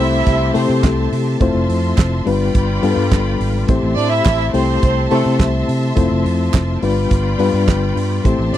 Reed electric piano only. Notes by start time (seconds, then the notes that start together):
Already playing: A3 C4 E4
0.00 G4 C5
0.54 A3 C4 E4 G4 A4
1.41 A3 C4 E4 F4 C5
2.25 G3 B3 D4 F4 B4
2.83 G3 B3 D4 F4 A4
2.91 B4
3.68 A3 C4 E4 G4 C5
4.53 A3 C4 E4 G4 C5
5.11 A3 C4 E4 G4 C5
5.96 A3 C4 E4 F4 C5
6.82 G3 B3 D4 F4 B4
7.38 G3 B3 D4 F4 B4
8.24 A3 C4 E4 G4 C5